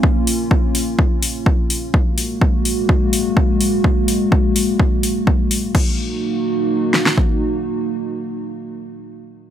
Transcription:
<<
  \new Staff \with { instrumentName = "Analog synth pad" } { \time 4/4 \key ees \minor \tempo 4 = 126 <bes des' f'>1 | <aes bes ges'>1~ | <aes bes ges'>1 | <bes ees' ges'>1~ |
<bes ees' ges'>1 | }
  \new DrumStaff \with { instrumentName = "Drums" } \drummode { \time 4/4 bd8 hho8 bd8 hho8 bd8 hho8 bd8 hho8 | bd8 hho8 bd8 hho8 bd8 hho8 bd8 hho8 | bd8 hho8 bd8 hho8 bd8 hho8 bd8 hho8 | <cymc bd>4 r4 r8 sn16 sn16 bd4 |
r4 r4 r4 r4 | }
>>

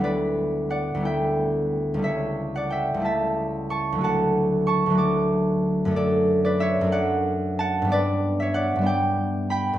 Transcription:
<<
  \new Staff \with { instrumentName = "Harp" } { \time 6/8 \key d \major \tempo 4. = 61 <g' b' d''>4 <d'' fis''>8 <e'' g''>4. | <cis'' e''>8. <d'' fis''>16 <e'' g''>8 <e'' a''>4 <a'' cis'''>8 | <fis'' a''>4 <a'' cis'''>8 <a'' d'''>4. | <a' d''>8. <b' d''>16 <cis'' e''>8 <d'' fis''>4 <fis'' a''>8 |
<b' d''>8. <cis'' e''>16 <d'' fis''>8 <d'' g''>4 <g'' b''>8 | }
  \new Staff \with { instrumentName = "Harp" } { \time 6/8 \key d \major <d, g b d' e'>4. <d, g b e'>4. | <cis, g a e'>4. <cis, g a e'>4. | <d, fis a fis'>4. <d, fis a fis'>4. | <fis, a d'>4. <fis, a d'>4. |
<g, g b d'>4. <g, g b d'>4. | }
>>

